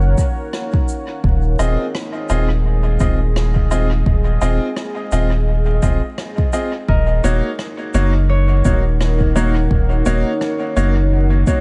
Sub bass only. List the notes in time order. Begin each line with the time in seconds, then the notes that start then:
Already playing: F#1
1.24 D#1
1.59 D#1
2.30 D#1
3.00 D#1
4.06 D#1
4.41 D#1
5.12 D#1
5.83 D#1
6.89 D#1
7.24 D#1
7.94 F#1
8.65 D#1
9.71 D#1
10.06 D#1
10.76 F#1